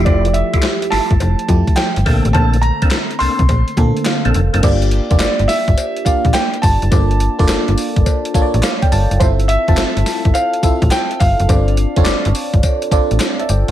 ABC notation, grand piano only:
X:1
M:4/4
L:1/8
Q:"Swing 16ths" 1/4=105
K:Gdor
V:1 name="Grand piano"
d e2 a3 g2 | a b2 c'3 z2 | z2 d e2 f g a- | a6- a z |
c e3 f2 g f- | f3 z4 z |]